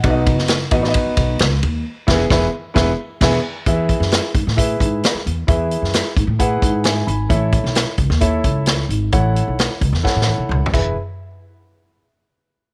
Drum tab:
CC |------------------------------------------------|------x-----------------------------x-----------|------------------------------------------------|------------------------------------------------|
RD |x-----x-----x-----x-----x-----x-----x-----x-----|------------------------------------------------|------------------------------------------------|------------------------------------------------|
HH |------------------------------------------------|------------------------------------------------|x-----x-----x-----x-----x-----x-----x-----x-----|x-----x-----x-----x-----x-----x-----x-----x-----|
SD |---------o--o--------o--------------o-----------|------o-----o-----------o-----------o-----------|---------o--o--------o--------------o-----------|---------o--o-----------------------o-----------|
T2 |------------------------------------------------|------------------------------------------------|------------------------------------------------|------------------------------------------------|
FT |------------------------------------------------|------------------------------------------------|------------------------------------------------|------------------------------------------------|
BD |o-----o-----------o-----o-----o-----------------|------o-----o-----------o-----------o-----------|o-----o-----------o-----o-----o-----------------|o-----------------o-----o-----o-----------------|

CC |------------------------------------------------|------------------------------------------x-----|------------------------------------------------|
RD |------------------------------------------------|------------------------------------------------|------------------------------------------------|
HH |x-----x-----x-----x-----x-----x-----x-----x-----|x-----x-----x-----x-----------------------------|------------------------------------------------|
SD |---------o--o--------o--------------o-----------|------------o--------o--o---o-------------------|------------------------------------------------|
T2 |------------------------------------------------|------------------------------------o-----------|------------------------------------------------|
FT |------------------------------------------------|----------------------------------------o-------|------------------------------------------------|
BD |o-----o-----------o-----o-----o-----------------|o-----------------o-----o-----------------o-----|------------------------------------------------|